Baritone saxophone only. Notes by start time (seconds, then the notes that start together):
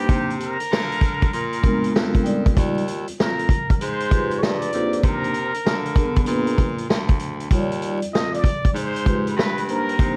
0.09 C3
0.60 D3
0.71 D3
1.34 A#2
1.95 F2
2.57 D#2
3.09 F2
3.19 F2
3.81 G#2
4.42 G2
4.73 F2
5.04 C3
5.55 D3
5.65 D3
6.27 A#2
6.89 D2
7.51 D#2
8.02 F2
8.13 F2
8.74 G#2
9.36 G2
10.00 C3